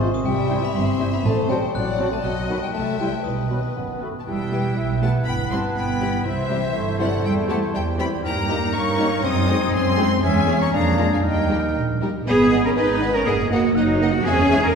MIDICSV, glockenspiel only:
0, 0, Header, 1, 2, 480
1, 0, Start_track
1, 0, Tempo, 500000
1, 245, Time_signature, 2, 2, 24, 8
1, 14160, End_track
2, 0, Start_track
2, 0, Title_t, "Glockenspiel"
2, 0, Program_c, 0, 9
2, 0, Note_on_c, 0, 84, 90
2, 102, Note_off_c, 0, 84, 0
2, 137, Note_on_c, 0, 87, 75
2, 242, Note_off_c, 0, 87, 0
2, 244, Note_on_c, 0, 79, 91
2, 575, Note_off_c, 0, 79, 0
2, 620, Note_on_c, 0, 83, 99
2, 722, Note_off_c, 0, 83, 0
2, 728, Note_on_c, 0, 84, 86
2, 1057, Note_off_c, 0, 84, 0
2, 1088, Note_on_c, 0, 83, 82
2, 1194, Note_off_c, 0, 83, 0
2, 1207, Note_on_c, 0, 81, 108
2, 1424, Note_off_c, 0, 81, 0
2, 1435, Note_on_c, 0, 79, 88
2, 1657, Note_off_c, 0, 79, 0
2, 1680, Note_on_c, 0, 90, 100
2, 2012, Note_off_c, 0, 90, 0
2, 2046, Note_on_c, 0, 81, 88
2, 2152, Note_off_c, 0, 81, 0
2, 2154, Note_on_c, 0, 90, 91
2, 2490, Note_off_c, 0, 90, 0
2, 2525, Note_on_c, 0, 79, 81
2, 2632, Note_off_c, 0, 79, 0
2, 2637, Note_on_c, 0, 81, 86
2, 2861, Note_off_c, 0, 81, 0
2, 2878, Note_on_c, 0, 79, 83
2, 3104, Note_off_c, 0, 79, 0
2, 3110, Note_on_c, 0, 87, 62
2, 3808, Note_off_c, 0, 87, 0
2, 14160, End_track
0, 0, End_of_file